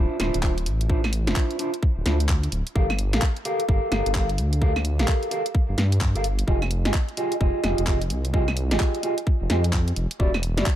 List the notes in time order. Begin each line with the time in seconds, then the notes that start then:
Already playing: D4 E4 F4 C5
0.19 D1 D4 E4 F4 C5, snare, open hi-hat, claves
0.34 D1, closed hi-hat
0.43 D4 E4 F4 C5, kick, clap
0.58 closed hi-hat
0.66 A1, open hi-hat
0.81 closed hi-hat
0.89 D4 E4 F4 C5, kick
1.04 snare, claves
1.13 open hi-hat
1.27 F1 D4 E4 F4 C5, snare, closed hi-hat
1.36 kick, clap
1.51 closed hi-hat
1.59 D4 E4 F4 C5, open hi-hat
1.74 closed hi-hat
1.83 kick
1.97 D1
2.06 D2 D4 E4 F4 C5, snare, open hi-hat
2.20 closed hi-hat
2.29 kick, clap
2.43 closed hi-hat
2.52 D1, open hi-hat
2.67 closed hi-hat
2.75 G1 G4 A4 A#4 F5, kick
2.90 snare, claves
2.99 open hi-hat
3.13 A#1 G4 A4 A#4 F5, snare, closed hi-hat
3.22 kick, clap
3.37 closed hi-hat
3.45 G4 A4 A#4 F5, open hi-hat
3.60 closed hi-hat
3.68 G1 G4 A4 A#4 F5, kick
3.92 G1 G4 A4 A#4 F5, snare, open hi-hat, claves
4.06 G1, closed hi-hat
4.15 G4 A4 A#4 F5, kick, clap
4.29 closed hi-hat
4.38 D2, open hi-hat
4.53 closed hi-hat
4.62 G4 A4 A#4 F5, kick
4.76 snare, claves
4.85 open hi-hat
4.99 A#1 G4 A4 A#4 F5, snare, closed hi-hat
5.08 kick, clap
5.23 closed hi-hat
5.31 G4 A4 A#4 F5, open hi-hat
5.46 closed hi-hat
5.55 kick
5.69 G1
5.78 G2, snare, open hi-hat
5.92 closed hi-hat
6.01 kick, clap
6.15 G1 G4 A4 A#4 F5, closed hi-hat
6.24 open hi-hat
6.39 closed hi-hat
6.47 F1 F4 G4 G#4 D#5, kick
6.62 snare, claves
6.71 open hi-hat
6.85 G#1 F4 G4 G#4 D#5, snare, closed hi-hat
6.94 kick, clap
7.09 closed hi-hat
7.17 F4 G4 G#4 D#5, open hi-hat
7.32 closed hi-hat
7.40 F1 F4 G4 G#4 D#5, kick
7.64 F1 F4 G4 G#4 D#5, snare, open hi-hat, claves
7.78 F1, closed hi-hat
7.87 F4 G4 G#4 D#5, kick, clap
8.02 closed hi-hat
8.10 C2, open hi-hat
8.25 closed hi-hat
8.33 F4 G4 G#4 D#5, kick
8.48 snare, claves
8.57 open hi-hat
8.71 G#1 F4 G4 G#4 D#5, snare, closed hi-hat
8.80 kick, clap
8.95 closed hi-hat
9.03 F4 G4 G#4 D#5, open hi-hat
9.18 closed hi-hat
9.27 kick
9.41 F1
9.50 F2 F4 G4 G#4 D#5, snare, open hi-hat
9.64 closed hi-hat
9.73 kick, clap
9.88 closed hi-hat
9.96 F1, open hi-hat
10.11 closed hi-hat
10.19 E1 E4 F#4 G4 D5, kick
10.34 snare, claves
10.43 open hi-hat
10.57 G1 E4 F#4 G4 D5, snare, closed hi-hat
10.66 kick, clap